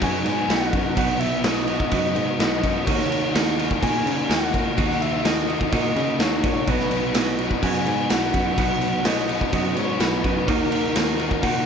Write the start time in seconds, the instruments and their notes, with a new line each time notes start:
Already playing: overdriven electric guitar B2
0.00 picked electric bass F#2, overdriven electric guitar B2 F#3 B3 D#4 F#4, soft synth lead G#5, kick, crash
0.24 picked electric bass G#2, overdriven electric guitar B3 D#4 F#4, crash
0.47 picked electric bass B1, overdriven electric guitar F#3 B3 D#4 F#4, soft synth lead F#5, snare, crash
0.73 picked electric bass F#2, overdriven electric guitar B3 D#4 F#4, kick, crash
0.96 picked electric bass B1, overdriven electric guitar B2 F#3 B3 D#4 F#4, soft synth lead F#5, kick, crash
1.19 overdriven electric guitar B3 D#4 F#4, soft synth lead E5, crash
1.43 picked electric bass B1, overdriven electric guitar B2 F#3 B3 D#4 F#4, soft synth lead E5, snare, crash
1.54 soft synth lead D#5
1.67 overdriven electric guitar B3 D#4 F#4, crash
1.80 kick
1.90 picked electric bass F#2, overdriven electric guitar B2 F#3 B3 D#4 F#4, soft synth lead D#5, kick, crash
2.14 picked electric bass G#2, overdriven electric guitar B3 D#4 F#4, crash
2.38 picked electric bass B1, overdriven electric guitar F#3 B3 D#4 F#4, soft synth lead D#5, snare, crash
2.64 picked electric bass F#2, overdriven electric guitar B3 D#4 F#4, kick, crash
2.85 picked electric bass D#2, overdriven electric guitar D#3 A#3 D#4 F#4, soft synth lead C#5, kick, crash
3.00 snare
3.10 overdriven electric guitar A#3 D#4 F#4, crash
3.33 picked electric bass D#2, overdriven electric guitar D#3 A#3 D#4 F#4, snare, crash
3.57 overdriven electric guitar A#3 D#4 F#4, crash
3.71 kick
3.81 picked electric bass A#2, overdriven electric guitar D#3 A#3 D#4 F#4, soft synth lead G#5, kick, crash
4.06 picked electric bass C#3, overdriven electric guitar A#3 D#4 F#4, crash
4.29 picked electric bass D#2, overdriven electric guitar D#3 A#3 D#4 F#4, soft synth lead F#5, snare, crash
4.53 picked electric bass A#2, overdriven electric guitar A#3 D#4 F#4, kick, crash
4.77 picked electric bass D#2, overdriven electric guitar D#3 A#3 D#4 F#4, soft synth lead F#5, kick, crash
4.91 snare
5.00 overdriven electric guitar A#3 D#4 F#4, soft synth lead E5, crash
5.24 picked electric bass D#2, overdriven electric guitar D#3 A#3 D#4 F#4, soft synth lead D#5, snare, crash
5.48 overdriven electric guitar A#3 D#4 F#4, crash
5.61 kick
5.72 picked electric bass A#2, overdriven electric guitar D#3 A#3 D#4 F#4, soft synth lead D#5, kick, crash
5.96 picked electric bass C#3, overdriven electric guitar A#3 D#4 F#4, crash
6.19 picked electric bass D#2, overdriven electric guitar D#3 A#3 D#4, soft synth lead C#5, snare, crash
6.23 overdriven electric guitar F#4
6.43 picked electric bass A#2, overdriven electric guitar A#3 D#4 F#4, soft synth lead C#5, kick, crash
6.67 picked electric bass B1, overdriven electric guitar B2 F#3 B3 D#4 F#4, soft synth lead B4, kick, crash
6.80 snare
6.91 overdriven electric guitar B3 D#4 F#4, crash
7.14 picked electric bass B1, overdriven electric guitar B2 F#3 B3 D#4 F#4, snare, tambourine, crash
7.39 overdriven electric guitar B3 D#4 F#4, crash
7.51 kick
7.62 picked electric bass F#2, overdriven electric guitar B2 F#3 B3 D#4 F#4, soft synth lead G#5, kick, crash
7.86 picked electric bass G#2, overdriven electric guitar B3 D#4 F#4, soft synth lead G#5, crash
8.09 picked electric bass B1, overdriven electric guitar F#3 B3 D#4 F#4, soft synth lead F#5, snare, tambourine, crash
8.33 picked electric bass F#2, overdriven electric guitar B3 D#4 F#4, kick, crash
8.56 picked electric bass B1, overdriven electric guitar B2 F#3 B3 D#4 F#4, soft synth lead F#5, kick, crash
8.80 overdriven electric guitar B3 D#4 F#4, crash
9.04 picked electric bass B1, overdriven electric guitar B2 F#3 B3 D#4 F#4, soft synth lead D#5, snare, tambourine, crash
9.28 overdriven electric guitar B3 D#4 F#4, crash
9.41 kick
9.51 picked electric bass F#2, overdriven electric guitar B2 F#3 B3 D#4 F#4, soft synth lead D#5, kick, crash
9.76 picked electric bass G#2, overdriven electric guitar B3 D#4 F#4, soft synth lead C#5, crash
10.00 picked electric bass B1, overdriven electric guitar F#3 B3 D#4 F#4, soft synth lead B4, snare, tambourine, crash
10.24 picked electric bass F#2, overdriven electric guitar B3 D#4 F#4, kick, crash
10.47 picked electric bass D#2, overdriven electric guitar D#3 A#3 D#4 F#4, soft synth lead A#4, kick, crash
10.71 overdriven electric guitar A#3 D#4 F#4, crash
10.94 picked electric bass D#2, overdriven electric guitar D#3 A#3 D#4 F#4, snare, tambourine, crash
11.18 overdriven electric guitar A#3 D#4 F#4, crash
11.31 kick
11.41 picked electric bass A#2, overdriven electric guitar D#3 A#3 D#4 F#4, soft synth lead F#5, kick, crash